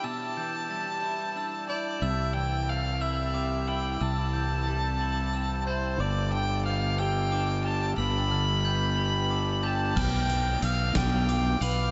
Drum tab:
CC |------|------|------|------|
HH |------|------|------|------|
SD |------|------|------|------|
BD |------|------|------|------|

CC |------|x-----|
HH |------|-xxxxx|
SD |------|---o--|
BD |------|o--o--|